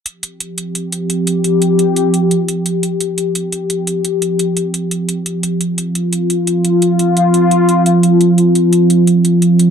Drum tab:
HH |xxxxxxxx|xxxxxxxx|xxxxxxxx|xxxxxxxx|

HH |xxxxxxxx|xxxxxxxx|xxxxxxxx|